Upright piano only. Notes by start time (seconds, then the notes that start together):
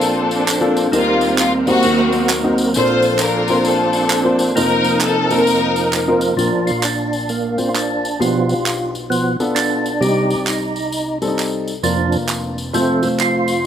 Already playing: A#1 A#2 A#3 C4 D4 F4 A4
0.60 A#3 C4 D4 F4 A4
0.92 D#2 D#3 A#3 C4 D#4 G4 A#4
1.67 A#3 C4 D#4 G4 C5
1.84 D#2 D#3 A#3 C4 D#4 F#4 A#4
2.44 A#3 C4 D#4 F#4 C5
2.76 A#1 A#2 A#3 C4 D4 F4 A4
3.49 A#3 C4 D4 F4 C5
4.24 A#3 C4 D4 F4 C5
4.57 F1 F2 A#3 C4 D#4 F4 A4
4.62 A#4
5.30 A#3 C4 D#4 F4 A4
5.36 A#4
6.08 A#3 C4 D#4 F4 A#4
6.38 A#1 A#2 A#3 D4 F4 A#4
7.58 A#3 D4 F4 C5
8.20 B1 B2 B3 D4 F4 G4
9.40 B3 D4 F4 A4
10.02 C2 C3 G3 C4 D4 G4
10.09 D#4
11.22 G3 C4 D4 A4
11.28 D#4
11.83 F1 F2 A#3 D4 F4 A#4
12.74 F1 F2 A3 C4 F4 A4
13.03 A3 C4 F4 C5